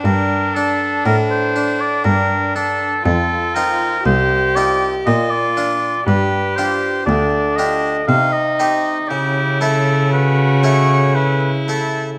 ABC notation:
X:1
M:3/4
L:1/16
Q:1/4=60
K:Gm
V:1 name="Oboe"
B2 A2 B c2 d B2 A2 | A2 B2 c2 d z e d3 | =B2 c2 d2 e2 f e3 | G2 A2 =B2 ^c2 B2 A z |]
V:2 name="Violin"
D12 | F4 G4 F4 | G4 D4 E4 | =E4 ^F4 E4 |]
V:3 name="Harpsichord"
z2 D4 D4 D2 | z2 [CEF]4 [CEF]2 z2 [DF]2 | z2 [DFG]4 [DFG]2 z2 [CEG]2 | z2 [A,=EA]4 [A,EA]4 [A,EA]2 |]
V:4 name="Harpsichord" clef=bass
G,,4 A,,4 G,,4 | F,,4 C,,4 B,,4 | G,,4 D,,4 C,4 | ^C,12 |]
V:5 name="Cello" clef=bass
G,,4 A,,4 G,,4 | F,,4 C,,4 B,,4 | G,,4 D,,4 C,4 | ^C,12 |]